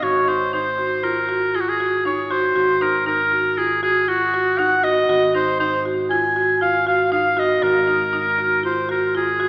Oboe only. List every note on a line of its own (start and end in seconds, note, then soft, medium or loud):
0.03 0.30 C#5 medium
0.29 0.53 C5 medium
0.54 1.05 C5 medium
1.03 1.57 A#4 medium
1.55 1.62 G#4 medium
1.60 1.70 F#4 medium
1.69 2.05 G#4 medium
2.06 2.33 C#5 medium
2.32 2.83 C5 medium
2.82 3.06 A#4 medium
3.07 3.59 A#4 medium
3.58 3.82 G#4 medium
3.83 4.10 G#4 medium
4.08 4.60 F#4 medium
4.58 4.85 F#5 medium
4.84 5.34 D#5 medium
5.35 5.58 C5 medium
5.60 5.83 C5 medium
6.10 6.57 G#5 medium
6.62 6.85 F5 medium
6.88 7.11 F5 medium
7.13 7.41 F5 medium
7.39 7.64 D#5 medium
7.63 8.64 A#4 medium
8.66 8.88 C5 medium
8.91 9.14 A#4 medium
9.17 9.49 G#4 medium